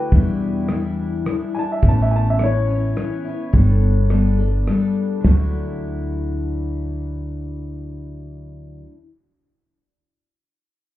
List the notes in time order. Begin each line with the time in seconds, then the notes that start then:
Already playing: D3 A3 E4 F#4 B4 G5
0.12 E2 B2 E3 G3 D4 E4, kick, closed hi-hat
0.68 E3 G3 D4 E4, cross-stick, closed hi-hat
1.26 E3 G3 D4 E4, cross-stick, closed hi-hat
1.55 E3 G3 D4 E4 G#5
1.59 A5
1.72 E5
1.82 A1 A2 E3 B3 C#4 E4, kick, closed hi-hat
1.89 A5
2.02 E5
2.11 G#5
2.16 A5
2.30 E5
2.39 E3 B3 C#4 E4, cross-stick, closed hi-hat
2.43 C#5
2.68 B3 C#4 E4
2.96 E3 B3 C#4 E4, cross-stick, closed hi-hat
3.25 B3 C#4 E4
3.53 G1 G3 B3 D4 A4, kick, closed hi-hat
4.10 G3 B3 D4 A4, cross-stick, closed hi-hat
4.39 B3 D4 A4
4.67 G3 B3 D4 A4, cross-stick, closed hi-hat
5.20 D2 D3
5.24 F#3, kick, snare
5.30 A3 D4
5.38 E4